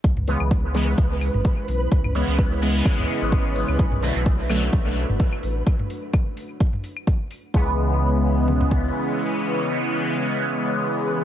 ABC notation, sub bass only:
X:1
M:4/4
L:1/16
Q:"Swing 16ths" 1/4=128
K:C#phr
V:1 name="Sub bass" clef=bass
C,,3 C,,4- C,, C,,3 G,,, z2 B,,,2 | C,,3 C,,4- C,, z C,, z G,,,4 C,, | B,,,3 B,,,4- B,,, B,,,3 F,,, z2 A,,,2 | z16 |
C,,12 z4 | z16 |]